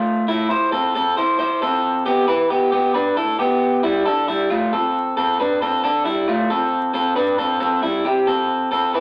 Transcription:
clean electric guitar
Already playing: A3 F4
0.28 A3 E4
0.50 E4 C5
0.72 C4 A4
0.95 C4 A4
1.17 E4 C5
1.39 E4 C5
1.62 C4 A4
2.06 B3 G4
2.28 E4 B4
2.50 B3 G4
2.72 B3 G4
2.94 D4 B4
3.17 E4 A4
3.39 B3 G4
3.83 G3 E4
4.06 D4 A4
4.28 G3 E4
4.50 A3 F4
4.73 C4 A4
5.17 C4 A4
5.40 D4 B4
5.62 C4 A4
5.84 D4 A4
6.05 G3 E4
6.28 A3 F4
6.50 C4 A4
6.94 C4 A4
7.16 D4 B4
7.38 C4 A4
7.60 C4 A4
7.83 G3 E4
8.05 C4 G4
8.27 C4 A4
8.71 C4 A4
8.94 E4 B4

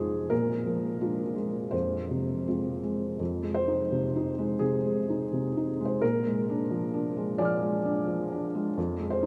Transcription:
felt piano
Already playing: F2 C3 G#3 D#4 F4 G#4
0.30 A#2 A#4
0.66 F3
1.01 G#3 D4 F4
1.35 G#3
1.71 F2 C5
2.10 C3
2.47 G#3 C4 F4
2.83 G#3
3.19 F2
3.43 G#3
3.54 C5
3.68 D#4
3.92 C3
4.16 D#4
4.38 G#3
4.59 C3 G#4
4.86 G#3
5.10 D#4
5.33 C3
5.57 D#4
5.81 G#3
5.85 C5
6.01 A#2 A#4
6.27 G#3
6.50 D4
6.71 F3
6.94 D4
7.17 G#3
7.38 F3 D5 G#5 D6
7.45 F6
7.62 G#3
7.86 D4
8.07 F3
8.32 D4
8.55 G#3
8.77 F2
9.00 G#3
9.10 C5
9.23 D#4

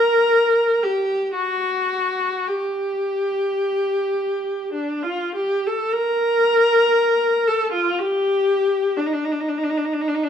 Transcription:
viola
Already playing: A#4
0.83 G4
1.35 F#4
2.47 G4
4.73 D4
5.02 F4
5.35 G4
5.67 A4
5.93 A#4
7.47 A4
7.71 F4
7.98 G4
8.97 D4
9.06 D#4
9.13 D4
9.24 D#4
9.32 D4
9.40 D#4
9.48 D4
9.58 D#4
9.64 D4
9.70 D#4
9.77 D4
9.85 D#4
9.93 D4
10.01 D#4
10.08 D4
10.14 D#4
10.23 D4

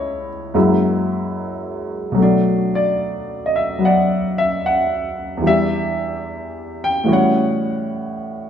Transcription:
grand piano
Already playing: C#2 C#3 G3 B3 E4 B4 C#5 D#5
0.54 F#2 F#3 G#3 A#3 E4
2.12 B2 F#3
2.18 A3
2.22 D4
2.75 D5
3.46 D#5
3.56 E5
3.79 F#3 B3
3.85 D5 F#5
4.38 E5
4.66 F#5
5.37 E2 E3
5.42 G3 D4 G4
5.47 E5
6.84 G5
7.04 A2 E3 G3 B3 C#4
7.08 F#4 C#5
7.13 F#5

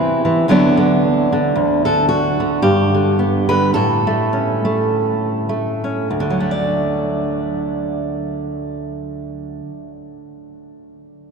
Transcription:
steel-string acoustic guitar
Already playing: E3 C4 E4
0.25 E3
0.48 D2 D3 F#3 B3 D4
0.77 D3
1.33 D3
1.55 D2
1.85 D3 A4
2.09 F#4
2.40 D3
2.62 G2 G4
2.94 D3
3.19 B3
3.49 D3 B4
3.74 A2 A4
4.07 A3
4.33 C#4
4.65 A3
5.49 A3
5.84 C#4
6.11 D2
6.20 D3
6.30 F#3
6.40 A3
6.51 D5

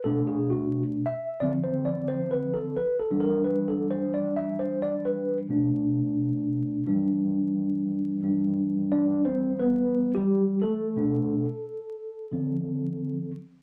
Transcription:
tine electric piano
0.04 B2 A3 D4 A4
0.27 G#4
0.50 F#4
1.06 E5
1.40 D3 F3 C4 D5
1.64 C5
1.85 D5
2.08 C5
2.31 B4
2.54 A4
2.76 B4
2.99 A4
3.11 E3 G3 D4
3.20 A#4
3.44 B4
3.68 A4
3.91 C5
4.14 D5
4.36 E5
4.59 C5
4.82 D5
5.05 B4
5.49 B2 A3 D4
6.86 E3 G3 D4
8.22 E3 G3 D4
8.92 D4 D5
9.25 C4 C5
9.59 B3 B4
10.15 G3 G4
10.62 A3 A4
10.96 B2 A3 D4
12.31 D3 F3 C4

